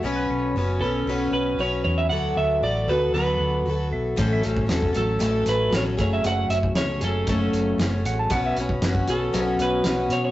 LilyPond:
<<
  \new Staff \with { instrumentName = "Electric slide guitar" } { \time 4/4 \key b \dorian \tempo 4 = 116 r4. a'4 b'8 cis''8 cis''16 e''16 | fis''8 e''8 d''8 b'8 b'4. r8 | r4. a'4 b'8 cis''8 cis''16 e''16 | fis''8 e''8 cis''8 a'8 a'4. r8 |
r4. a'4 b'4 cis''16 cis''16 | }
  \new Staff \with { instrumentName = "Electric slide guitar" } { \time 4/4 \key b \dorian cis''16 b'16 a'8 fis'8 r2 r8 | r2. r8 e''8 | c''16 e''16 c''8 a'8 r2 r8 | r2. r8 fis''16 a''16 |
fis''16 e''16 cis''8 b'8 r2 r8 | }
  \new Staff \with { instrumentName = "Twelve-string acoustic guitar" } { \time 4/4 \key b \dorian <b, fis b cis' b'>4 <fis b cis' b'>8 <b cis' b'>8 <b, fis b cis' b'>4 <fis b cis' b'>4 | <d fis b fis' a'>4 <fis b fis' a'>8 <b fis' a'>8 <d fis b fis' a'>4 <fis b fis' a'>4 | <a, e fis a cis' a'>8 <fis a cis' a'>8 <fis a cis' a'>8 <fis a cis' a'>8 <a, e fis a cis' a'>4 <fis a cis' a'>8 <fis, cis fis a cis' gis'>8~ | <fis, cis fis a cis' gis'>4 <fis a cis' gis'>8 <fis a cis' gis'>8 <fis, cis fis a cis'>4 <fis a cis' gis'>4 |
<b, fis b cis' fis'>8 <b cis' fis'>8 <fis b cis' fis'>8 <b cis' fis'>8 <b, fis b cis' fis'>4 <fis b cis' fis'>4 | }
  \new Staff \with { instrumentName = "Fingered electric bass" } { \clef bass \time 4/4 \key b \dorian b,,8 b,,8 fis,,8 b,,8 b,,8 b,,8 b,,8 e,8 | d,8 d,8 a,,8 d,8 d,8 d,8 d,8 b,,8 | a,,8 a,,8 e,,8 a,,8 a,,8 a,,8 a,,8 fis,,8 | fis,,8 fis,,8 cis,8 fis,,8 fis,,8 fis,,8 fis,,8 a,,8 |
b,,8 b,,8 fis,,8 b,,8 b,,8 b,,8 b,,8 b,8 | }
  \new DrumStaff \with { instrumentName = "Drums" } \drummode { \time 4/4 r4 r4 r4 r4 | r4 r4 r4 r4 | <hh bd>8 hh16 bd16 <hh sn>16 bd16 hh8 hh8 hh8 <hh sn>8 <hh bd>8 | hh8 hh16 bd16 <hh sn>8 hh8 <hh bd>8 hh8 <hh sn>8 hh8 |
<hh bd>8 hh16 bd16 <hh sn>16 bd16 hh8 hh8 hh8 <hh sn>8 hh8 | }
>>